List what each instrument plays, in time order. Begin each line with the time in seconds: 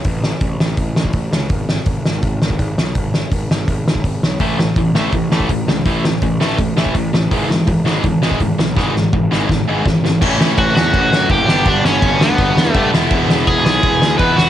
0.04 picked electric bass A1, kick, open hi-hat
0.24 snare
0.41 picked electric bass A1, kick, open hi-hat
0.59 picked electric bass A1, snare
0.77 picked electric bass A1, kick, open hi-hat
0.96 picked electric bass A1, snare
1.05 kick
1.13 picked electric bass A1, kick, open hi-hat
1.32 picked electric bass C#2, snare
1.50 picked electric bass G#1, kick, open hi-hat
1.69 snare
1.86 picked electric bass G#1, kick, open hi-hat
2.06 picked electric bass G#1, snare
2.22 picked electric bass G#1, kick, open hi-hat
2.42 picked electric bass G#1, snare
2.50 kick
2.59 picked electric bass G#1, kick, open hi-hat
2.78 picked electric bass B1, snare
2.95 picked electric bass G#1, kick, open hi-hat
3.14 snare
3.31 picked electric bass G#1, kick, open hi-hat
3.50 picked electric bass G#1, snare
3.68 picked electric bass G#1, kick, open hi-hat
3.86 picked electric bass G#1, snare
3.95 kick
4.04 picked electric bass G#1, kick, open hi-hat
4.22 picked electric bass B1, snare
4.40 picked electric bass A1, overdriven electric guitar A2 E3 A3, kick, open hi-hat
4.59 overdriven electric guitar A2 E3, snare
4.76 picked electric bass A1, overdriven electric guitar A2 E3, kick, open hi-hat
4.94 picked electric bass A1, overdriven electric guitar A2 E3 A3, snare
5.12 picked electric bass A1, overdriven electric guitar A2 E3, kick, open hi-hat
5.30 picked electric bass A1, overdriven electric guitar A2 E3 A3, snare
5.40 kick
5.49 picked electric bass A1, overdriven electric guitar A2 E3, kick, open hi-hat
5.66 picked electric bass C#2, overdriven electric guitar A2 E3, snare
5.85 picked electric bass A1, overdriven electric guitar A2 E3 A3, kick, open hi-hat
6.05 overdriven electric guitar A2 E3, snare
6.22 picked electric bass A1, overdriven electric guitar A2 E3, kick, open hi-hat
6.40 picked electric bass A1, overdriven electric guitar A2 E3 A3, snare
6.58 picked electric bass A1, overdriven electric guitar A2 E3, kick, open hi-hat
6.77 picked electric bass A1, overdriven electric guitar A2 E3 A3, snare
6.86 kick
6.95 picked electric bass A1, overdriven electric guitar A2 E3, kick, open hi-hat
7.13 picked electric bass A1, overdriven electric guitar A2 E3, snare
7.31 picked electric bass G#1, overdriven electric guitar G#2 E3 G#3, kick, open hi-hat
7.49 overdriven electric guitar G#2 E3, snare
7.67 picked electric bass G#1, overdriven electric guitar G#2 E3, kick, open hi-hat
7.85 picked electric bass G#1, overdriven electric guitar G#2 E3 G#3, snare
8.04 picked electric bass G#1, overdriven electric guitar G#2 E3, kick, open hi-hat
8.22 picked electric bass G#1, overdriven electric guitar G#2 E3 G#3, snare
8.31 kick
8.40 picked electric bass G#1, overdriven electric guitar G#2 E3, kick, open hi-hat
8.59 picked electric bass B1, overdriven electric guitar G#2 E3, snare
8.76 picked electric bass G#1, overdriven electric guitar G#2 E3 G#3, kick, snare
8.95 overdriven electric guitar G#2 E3, snare
9.13 picked electric bass G#1, overdriven electric guitar G#2 E3, kick
9.31 picked electric bass G#1, overdriven electric guitar G#2 E3 G#3, snare
9.49 picked electric bass G#1, overdriven electric guitar G#2 E3, kick, snare
9.68 picked electric bass G#1, overdriven electric guitar G#2 E3 G#3
9.86 picked electric bass G#1, overdriven electric guitar G#2 E3, kick, snare
10.04 picked electric bass G#1, overdriven electric guitar G#2 E3, snare
10.21 picked electric bass A1, overdriven electric guitar A2 E3 A3 C#4 E4, kick, crash
10.41 picked electric bass A1, snare
10.57 picked electric bass A1, overdriven electric guitar F#4, kick, crash
10.76 picked electric bass E2, overdriven electric guitar F#4, snare
10.93 picked electric bass A1, kick, crash
11.12 picked electric bass F#2, snare
11.29 picked electric bass F#1, overdriven electric guitar G4, kick, crash
11.47 picked electric bass G1, overdriven electric guitar G2 D3 G3 B3 D4, snare
11.65 picked electric bass G1, overdriven electric guitar D4, kick, crash
11.84 picked electric bass G1, overdriven electric guitar C#4, snare
12.02 picked electric bass G1, kick, crash
12.20 picked electric bass D2, overdriven electric guitar B3, snare
12.38 picked electric bass G1, kick, crash
12.57 picked electric bass E2, snare
12.72 overdriven electric guitar G2 D3 G3 A3, picked electric bass G2, kick, crash
12.77 overdriven electric guitar B3 D4
12.92 picked electric bass E1, overdriven electric guitar E3 G#3 B3 E4, snare
13.11 picked electric bass E1, kick, crash
13.29 picked electric bass E1, snare
13.47 picked electric bass E1, overdriven electric guitar G#4, kick, crash
13.65 picked electric bass B1, overdriven electric guitar G#4, snare
13.83 picked electric bass E1, kick, crash
14.02 picked electric bass D2, snare
14.18 picked electric bass E2, overdriven electric guitar E3 G#3 B3 E4 B4, kick, crash
14.37 picked electric bass E1, overdriven electric guitar F#4, snare